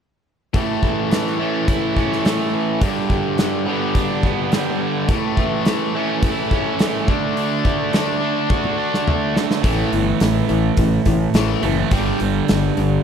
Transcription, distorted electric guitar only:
0.54 1.38 A2 medium
0.54 1.39 E3 medium
0.54 1.38 A3 medium
1.39 2.81 A2 soft
1.39 2.81 E3 medium
1.39 2.80 A3 medium
2.82 3.66 G2 medium
2.82 3.66 D3 medium
2.82 3.65 G3 medium
3.67 5.09 G2 medium
3.67 5.08 D3 medium
3.67 5.07 G3 medium
5.09 5.93 A2 medium
5.09 5.93 E3 medium
5.09 5.95 A3 medium
5.95 7.07 A2 soft
5.95 7.08 E3 medium
5.95 7.09 A3 medium
7.08 7.92 D3 medium
7.08 7.92 A3 medium
7.08 7.93 D4 medium
7.94 9.35 D3 medium
7.94 9.35 A3 medium
7.94 9.36 D4 medium
9.64 9.91 A2 medium
9.64 9.91 E3 medium
9.64 9.91 A3 medium
9.93 10.18 A2 medium
9.93 10.19 E3 medium
10.21 10.47 A2 medium
10.21 10.47 E3 medium
10.49 10.75 A2 medium
10.49 10.75 E3 medium
10.78 11.04 A2 medium
10.78 11.04 E3 medium
11.06 11.32 A2 medium
11.06 11.32 E3 medium
11.35 11.62 A2 medium
11.35 11.62 E3 medium
11.35 11.62 A3 medium
11.64 11.90 A2 medium
11.64 11.90 E3 medium
11.92 12.19 G2 medium
11.92 12.19 D3 medium
11.92 12.19 G3 medium
12.20 12.46 G2 medium
12.20 12.46 D3 medium
12.49 12.75 G2 medium
12.49 12.75 D3 medium
12.78 13.03 G2 medium
12.78 13.03 D3 medium

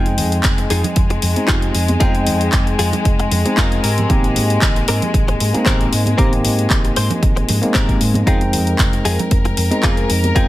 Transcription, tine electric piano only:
0.00 1.33 G#3 medium
0.00 1.33 C4 medium
0.00 1.33 D#4 medium
0.00 1.34 G5 medium
1.36 1.98 G#3 medium
1.36 1.98 C4 medium
1.36 1.99 D#4 medium
2.00 3.42 G#3 medium
2.00 3.42 C4 medium
2.00 3.42 D#4 medium
2.00 3.43 G5 medium
3.45 3.82 G#3 medium
3.45 3.82 C4 medium
3.45 3.83 D#4 medium
4.09 5.51 A#3 medium
4.09 5.51 C4 medium
4.09 5.51 D#4 medium
4.09 5.52 G4 medium
5.53 6.16 G#3 medium
5.53 6.15 A#3 medium
5.53 6.16 C4 medium
5.53 6.16 D#4 medium
6.17 7.59 A#3 medium
6.17 7.59 C4 medium
6.17 7.60 D#4 medium
6.17 7.60 G4 medium
7.62 8.25 G#3 medium
7.62 8.24 A#3 medium
7.62 8.24 C4 medium
7.62 8.24 D#4 medium
8.26 9.68 G#3 medium
8.26 9.68 C4 medium
8.26 9.69 D#4 medium
8.26 9.69 G5 medium
9.71 10.33 G#3 medium
9.71 10.33 C4 medium
9.71 10.33 D#4 medium
10.35 10.48 G#3 medium
10.35 10.48 C4 medium
10.35 10.48 D#4 medium
10.35 10.48 G5 medium

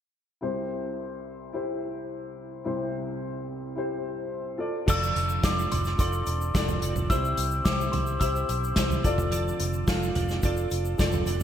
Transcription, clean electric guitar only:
4.88 5.43 D3 medium
4.88 5.42 F3 medium
4.88 5.44 C4 medium
4.88 5.43 D4 medium
4.88 5.43 A4 medium
4.88 5.44 D5 medium
5.44 5.72 D3 medium
5.44 5.71 F3 medium
5.44 5.71 C4 medium
5.44 5.71 D4 medium
5.44 5.71 A4 medium
5.44 5.70 D5 loud
5.71 5.99 C4 soft
5.71 5.98 D4 soft
5.71 5.99 A4 medium
5.71 5.99 D5 medium
5.99 6.55 C4 medium
5.99 6.54 D4 medium
5.99 6.54 A4 medium
5.99 6.54 D5 medium
6.54 6.83 D3 medium
6.54 6.82 F3 medium
6.54 6.82 C4 medium
6.54 6.83 D4 medium
6.54 6.82 A4 medium
6.54 6.81 D5 medium
6.82 7.09 C4 medium
6.82 7.10 D4 soft
6.82 7.10 A4 soft
6.82 7.10 D5 medium
7.10 7.65 C4 medium
7.10 7.64 E4 medium
7.10 7.64 G4 medium
7.10 7.65 E5 medium
7.65 7.93 C4 medium
7.65 7.92 E4 medium
7.65 7.93 G4 medium
7.65 7.91 E5 medium
7.93 8.20 E4 soft
7.93 8.19 G4 soft
7.93 8.20 E5 medium
8.20 8.76 C4 medium
8.20 8.76 E4 medium
8.20 8.76 G4 medium
8.20 8.76 E5 medium
8.76 9.04 C4 medium
8.76 9.04 E4 medium
8.76 9.04 G4 medium
8.76 9.03 E5 medium
9.03 9.30 C4 medium
9.03 9.30 D4 soft
9.03 9.31 A4 medium
9.03 9.31 D5 medium
9.31 9.87 D3 medium
9.31 9.86 F3 medium
9.31 9.88 C4 medium
9.31 9.87 D4 medium
9.31 9.87 A4 medium
9.31 9.88 D5 loud
9.88 10.15 D3 medium
9.88 10.15 F3 medium
9.88 10.16 C4 medium
9.88 10.16 D4 medium
9.88 10.15 A4 medium
9.88 10.15 D5 medium
10.16 10.43 C4 soft
10.16 10.42 D4 soft
10.16 10.44 A4 medium
10.16 10.43 D5 medium
10.44 11.00 C4 medium
10.44 10.99 D4 medium
10.44 10.99 A4 medium
10.44 11.00 D5 medium
11.00 11.27 D3 medium
11.00 11.27 F3 medium
11.00 11.26 C4 medium
11.00 11.27 D4 medium
11.00 11.26 A4 medium
11.00 11.25 D5 medium
11.26 11.43 C4 medium
11.26 11.43 D4 soft
11.26 11.43 A4 medium
11.26 11.43 D5 medium

